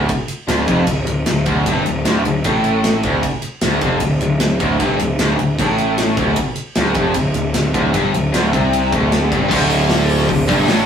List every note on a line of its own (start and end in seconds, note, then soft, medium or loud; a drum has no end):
0.09 kick medium
0.09 ride medium
0.28 ride medium
0.48 0.67 D1 medium
0.48 0.66 D2 medium
0.48 snare loud
0.48 ride medium
0.67 0.87 F1 medium
0.67 0.87 F2 medium
0.67 kick loud
0.67 ride medium
0.87 1.06 D1 medium
0.87 1.04 D2 medium
0.87 kick medium
0.87 ride medium
1.07 1.26 D1 medium
1.07 1.23 D2 medium
1.07 ride medium
1.26 1.45 D1 medium
1.26 1.44 D2 medium
1.26 snare loud
1.26 ride medium
1.46 1.65 D1 medium
1.46 1.66 D2 loud
1.46 kick loud
1.46 ride medium
1.66 1.85 G1 medium
1.66 1.86 G2 loud
1.66 kick medium
1.66 ride medium
1.86 2.05 D1 medium
1.86 2.03 D2 medium
1.86 ride medium
2.05 2.24 D1 medium
2.05 2.25 D2 medium
2.05 snare loud
2.05 ride medium
2.25 2.43 D1 medium
2.25 2.42 D2 medium
2.25 ride medium
2.44 3.00 A1 medium
2.44 3.03 A2 loud
2.44 kick loud
2.44 ride medium
2.64 ride medium
2.84 snare loud
2.84 ride medium
3.03 3.22 D1 medium
3.03 3.23 D2 medium
3.03 kick loud
3.03 ride medium
3.23 kick medium
3.23 ride medium
3.42 ride medium
3.61 3.81 D1 medium
3.61 3.82 D2 loud
3.61 snare loud
3.61 ride loud
3.81 4.00 F1 medium
3.81 4.02 F2 medium
3.81 kick loud
3.81 ride medium
4.00 4.20 D1 medium
4.00 4.18 D2 medium
4.00 kick medium
4.00 ride medium
4.20 4.39 D1 medium
4.20 4.38 D2 medium
4.20 ride medium
4.40 4.59 D1 medium
4.40 4.57 D2 medium
4.40 snare loud
4.40 ride medium
4.60 4.79 D1 medium
4.60 4.79 D2 loud
4.60 kick loud
4.60 ride medium
4.79 4.98 G1 loud
4.79 4.99 G2 loud
4.79 kick medium
4.79 ride medium
4.98 5.17 D1 medium
4.98 5.16 D2 medium
4.98 ride medium
5.18 5.37 D1 medium
5.18 5.39 D2 loud
5.18 snare loud
5.18 ride loud
5.38 5.57 D1 medium
5.38 5.56 D2 medium
5.38 ride medium
5.59 6.14 A1 medium
5.59 6.18 A2 loud
5.59 kick loud
5.59 ride medium
5.78 ride medium
5.98 snare loud
5.98 ride medium
6.17 6.36 D1 medium
6.17 6.38 D2 loud
6.17 kick loud
6.17 ride medium
6.36 kick loud
6.36 ride medium
6.56 ride medium
6.75 6.95 D1 loud
6.75 6.96 D2 loud
6.75 snare loud
6.75 ride medium
6.94 7.14 F1 medium
6.94 7.16 F2 loud
6.94 kick loud
6.94 ride medium
7.14 7.34 D1 medium
7.14 7.32 D2 medium
7.14 kick medium
7.14 ride medium
7.34 7.53 D1 medium
7.34 7.51 D2 medium
7.34 ride medium
7.54 7.73 D1 medium
7.54 7.70 D2 medium
7.54 snare loud
7.54 ride medium
7.74 7.93 D1 medium
7.74 7.94 D2 loud
7.74 kick loud
7.74 ride medium
7.94 8.13 G1 medium
7.94 8.13 G2 loud
7.94 kick loud
7.94 ride medium
8.14 8.33 D1 medium
8.14 8.30 D2 medium
8.14 ride medium
8.33 8.52 D1 medium
8.33 8.52 D2 medium
8.33 snare loud
8.33 ride loud
8.53 8.90 C2 loud
8.53 8.92 C3 medium
8.53 kick loud
8.53 ride medium
8.73 ride medium
8.92 9.29 D1 loud
8.92 9.31 D2 medium
8.92 kick loud
8.92 ride medium
9.12 snare loud
9.12 ride medium
9.31 9.50 G1 medium
9.31 9.49 G2 loud
9.31 kick loud
9.31 ride medium
9.50 10.26 D1 loud
9.50 10.28 D2 loud
9.50 10.86 A3 medium
9.50 10.86 D4 medium
9.50 kick loud
9.50 crash loud
9.54 10.86 F4 medium
9.70 open hi-hat medium
9.80 snare soft
9.89 snare loud
9.89 open hi-hat medium
10.09 open hi-hat medium
10.19 snare soft
10.29 10.48 D1 medium
10.29 10.45 D2 medium
10.29 kick medium
10.29 open hi-hat medium
10.48 10.67 G1 loud
10.48 10.68 G2 loud
10.48 kick loud
10.48 open hi-hat medium
10.67 10.86 A1 medium
10.67 10.85 A2 loud
10.67 snare loud
10.67 open hi-hat medium